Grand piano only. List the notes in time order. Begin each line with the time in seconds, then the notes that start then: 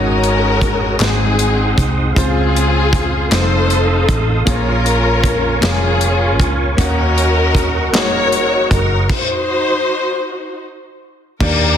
Already playing: G#2 G#3 C#4 D#4 F#4 C#5
0.99 G#2 G#3 C4 D#4 F#4 C5
2.15 C#3 G#3 C4 F4 C5
3.31 G#3 C4 D#4 F4 C5
3.37 A3
4.45 A#2 A#3 C#4 F4 G#4 C5
4.56 C#5
5.60 A#3 C#4 F4 G#4 C#5
6.77 D#3 A#3 C#4 D#4 F#4 C#5
7.93 A#3 C#4 D#4 F#4 G#4
11.40 D#3 A#3 D4 G4 D5